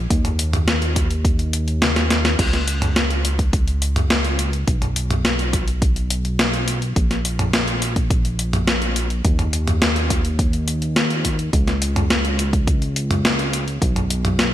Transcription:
0.10 analog synth bass D#2, kick, closed hi-hat
0.25 closed hi-hat, mid tom
0.39 closed hi-hat
0.53 closed hi-hat, mid tom
0.68 snare, closed hi-hat
0.82 closed hi-hat
0.96 kick, closed hi-hat
1.11 closed hi-hat
1.25 kick, closed hi-hat
1.39 closed hi-hat
1.53 closed hi-hat
1.68 closed hi-hat
1.82 snare, closed hi-hat, high tom
1.96 snare, closed hi-hat
2.10 snare, closed hi-hat
2.25 snare, closed hi-hat
2.39 analog synth bass C#2, kick, closed hi-hat, crash
2.53 snare, closed hi-hat
2.68 closed hi-hat
2.82 closed hi-hat, mid tom
2.96 snare, closed hi-hat
3.10 closed hi-hat
3.25 closed hi-hat
3.39 kick, closed hi-hat
3.53 kick, closed hi-hat
3.68 closed hi-hat
3.82 closed hi-hat
3.96 closed hi-hat, mid tom
4.10 snare, closed hi-hat
4.24 closed hi-hat
4.39 closed hi-hat
4.53 closed hi-hat
4.68 analog synth bass B1, kick, closed hi-hat
4.82 closed hi-hat, mid tom
4.96 closed hi-hat
5.11 closed hi-hat, mid tom
5.25 snare, closed hi-hat
5.39 closed hi-hat
5.53 kick, closed hi-hat
5.68 closed hi-hat
5.82 kick, closed hi-hat
5.96 closed hi-hat
6.10 closed hi-hat
6.25 closed hi-hat
6.39 snare, closed hi-hat
6.53 closed hi-hat
6.68 closed hi-hat
6.82 closed hi-hat
6.96 analog synth bass A#1, kick, closed hi-hat
7.11 snare, closed hi-hat
7.25 closed hi-hat
7.39 closed hi-hat, mid tom
7.53 snare, closed hi-hat
7.68 closed hi-hat
7.82 closed hi-hat
7.96 kick, closed hi-hat
8.10 kick, closed hi-hat
8.25 closed hi-hat
8.39 closed hi-hat
8.53 closed hi-hat, mid tom
8.68 snare, closed hi-hat
8.82 closed hi-hat
8.96 closed hi-hat
9.10 closed hi-hat
9.25 analog synth bass D#2, kick, closed hi-hat
9.39 closed hi-hat, mid tom
9.53 closed hi-hat
9.67 closed hi-hat, mid tom
9.82 snare, closed hi-hat
9.96 closed hi-hat
10.10 kick, closed hi-hat
10.25 closed hi-hat
10.39 kick, closed hi-hat
10.53 closed hi-hat
10.68 closed hi-hat
10.82 closed hi-hat
10.96 snare, closed hi-hat
11.10 closed hi-hat
11.25 kick, closed hi-hat
11.39 closed hi-hat
11.53 analog synth bass C#2, kick, closed hi-hat
11.68 snare, closed hi-hat
11.82 closed hi-hat
11.96 closed hi-hat, mid tom
12.10 snare, closed hi-hat
12.25 closed hi-hat
12.39 closed hi-hat
12.53 kick, closed hi-hat
12.67 kick, closed hi-hat
12.82 closed hi-hat
12.96 closed hi-hat
13.11 closed hi-hat, mid tom
13.25 snare, closed hi-hat
13.39 closed hi-hat
13.53 closed hi-hat
13.68 closed hi-hat
13.82 analog synth bass B1, kick, closed hi-hat
13.96 closed hi-hat, mid tom
14.10 closed hi-hat
14.25 closed hi-hat, mid tom
14.39 snare, closed hi-hat

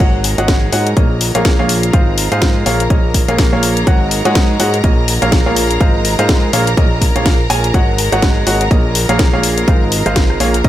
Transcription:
0.00 analog synth bass G#1, upright piano G#3 F#4 G#4 C#5 D#5 F#5, violin section A#4 A#5, kick, closed hi-hat
0.24 open hi-hat
0.38 analog synth bass G#1, upright piano G#3 F#4 G#4 C#5 D#5 F#5, closed hi-hat
0.48 kick, snare, closed hi-hat
0.72 analog synth bass G#2, upright piano F#4 G#4 C#5 D#5 F#5, open hi-hat
0.87 closed hi-hat
0.97 analog synth bass A#1, upright piano A#3 F4 G#4 A#4 C#5 D#5, kick, closed hi-hat
1.21 open hi-hat
1.35 analog synth bass A#1, upright piano A#3 F4 G#4 A#4 C#5 F5, closed hi-hat
1.45 kick, snare, closed hi-hat
1.59 analog synth bass A#1, upright piano A#3 F4 G#4 A#4 C#5 F5
1.69 open hi-hat
1.83 closed hi-hat
1.93 analog synth bass G#1, upright piano G#3 F4 G#4 C5 D#5 F5, kick, closed hi-hat
2.18 open hi-hat
2.32 analog synth bass G#2, upright piano G#3 F4 G#4 C5 D#5 F5, closed hi-hat
2.42 kick, snare, closed hi-hat
2.66 analog synth bass A#1, upright piano A#3 F4 G#4 A#4 C#5 F5, open hi-hat
2.80 closed hi-hat
2.90 analog synth bass A#1, upright piano A#3 F4 G#4 A#4 C#5 D#5, kick, closed hi-hat
3.14 kick, open hi-hat
3.28 analog synth bass A#1, upright piano A#3 F4 G#4 A#4 C#5 F5, closed hi-hat
3.38 kick, snare, open hi-hat
3.53 analog synth bass A#1, upright piano A#3 F4 G#4 A#4 C#5 F5
3.63 open hi-hat
3.77 closed hi-hat
3.87 analog synth bass G#1, upright piano G#3 F#4 G#4 C#5 D#5 F#5, kick, closed hi-hat
4.11 open hi-hat
4.25 analog synth bass G#2, upright piano G#3 F#4 G#4 C#5 D#5 F#5, closed hi-hat
4.35 kick, snare, closed hi-hat
4.60 analog synth bass G#2, upright piano F#4 G#4 C#5 D#5 F#5, open hi-hat
4.74 closed hi-hat
4.84 analog synth bass A#1, upright piano A#3 F4 G#4 A#4 C#5 D#5, kick, closed hi-hat
5.08 open hi-hat
5.22 analog synth bass A#1, upright piano A#3 F4 G#4 A#4 C#5 F5, closed hi-hat
5.32 kick, snare, closed hi-hat
5.46 analog synth bass A#1, upright piano A#3 F4 G#4 A#4 C#5 F5
5.56 open hi-hat
5.71 closed hi-hat
5.81 analog synth bass G#1, upright piano G#3 F4 G#4 C5 D#5 F5, kick, closed hi-hat
6.05 open hi-hat
6.19 analog synth bass G#2, upright piano G#3 F4 G#4 C5 D#5 F5, closed hi-hat
6.29 kick, snare, closed hi-hat
6.53 analog synth bass A#1, upright piano A#3 F4 G#4 A#4 C#5 F5, open hi-hat
6.67 closed hi-hat
6.77 analog synth bass A#1, upright piano A#3 F4 G#4 A#4 C#5 D#5, kick, closed hi-hat
7.02 kick, open hi-hat
7.16 analog synth bass A#1, upright piano A#3 F4 G#4 A#4 C#5 F5, closed hi-hat
7.26 kick, snare, open hi-hat
7.50 analog synth bass A#1, upright piano F4 G#4 A#4 C#5 G#5, open hi-hat
7.64 closed hi-hat
7.74 analog synth bass G#1, upright piano G#3 F#4 G#4 C#5 D#5 F#5, kick, closed hi-hat
7.98 open hi-hat
8.12 analog synth bass G#1, upright piano G#3 F#4 G#4 C#5 D#5 F#5, cross-stick, closed hi-hat
8.22 kick, snare, closed hi-hat
8.47 analog synth bass G#1, upright piano F#4 G#4 C#5 D#5 F#5, open hi-hat
8.61 closed hi-hat
8.71 analog synth bass A#1, upright piano A#3 F4 G#4 A#4 C#5 D#5, kick, closed hi-hat
8.95 open hi-hat
9.09 analog synth bass A#1, upright piano A#3 F4 G#4 A#4 C#5 F5, closed hi-hat
9.19 kick, snare, closed hi-hat
9.33 analog synth bass A#1, upright piano A#3 F4 G#4 A#4 C#5 F5
9.43 open hi-hat
9.58 closed hi-hat
9.68 analog synth bass G#1, upright piano G#3 F4 G#4 C5 D#5 F5, kick, closed hi-hat
9.92 open hi-hat
10.06 analog synth bass G#1, upright piano G#3 F4 G#4 C5 D#5 F5, cross-stick, closed hi-hat
10.16 kick, snare, closed hi-hat
10.30 cross-stick
10.40 analog synth bass A#1, upright piano A#3 F4 G#4 A#4 C#5 F5, open hi-hat
10.54 closed hi-hat
10.64 analog synth bass A#1, upright piano A#3 F4 G#4 A#4 C#5 D#5, kick, closed hi-hat

